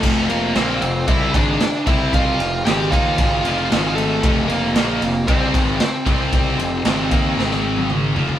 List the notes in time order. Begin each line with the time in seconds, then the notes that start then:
Already playing: A3 A4
0.03 F1 F2 C3 F3, kick, crash, ride
0.29 A#3 A#4, ride
0.55 A#1 A#2 F3 A#3 C4 C5, snare, ride
0.81 F1 F2 C3, ride
1.08 C2 C3 G3 C4 E4 E5, kick, ride
1.34 G#1 G#2 D#3 G#3 D4 D5, kick, ride
1.60 snare, ride
1.87 C2 C3 G3 C4 E4 E5, kick, ride
2.13 F4 F5, kick, ride
2.39 F1 F2 C3, ride
2.65 G#1 G#2 D#3 G#3 G4 G5, snare, ride
2.91 D#2 D#3 A#3 D#4 F4 F5, kick, ride
3.18 G#1 G#2 D#3 G#3, kick, ride
3.45 F1 F2 C3 F3, ride
3.71 G#1 G#2 D#3 G#3, snare, ride
3.95 A3 A4, ride
4.23 F1 F2 C3 F3, kick, ride
4.47 A#3 A#4, ride
4.74 A#1 A#2 F3 A#3, snare, ride
5.01 F1 F2 C3, ride
5.27 C2 C3 G3 C4 C5, kick, ride
5.53 G#1 G#2 D#3 G#3, kick, ride
5.80 C4 C5, snare, ride
6.06 C2 C3 G3 C4, kick, ride
6.33 kick, ride
6.59 F1 F2 C3, ride
6.85 G#1 G#2 D#3 G#3, snare, ride
7.11 D#2 D#3 A#3 D#4, kick, ride
7.37 G#1 G#2 D#3 G#3, snare
7.51 snare
7.77 high tom
7.90 mid tom
8.16 F1 F2 C3 F3, floor tom
8.29 floor tom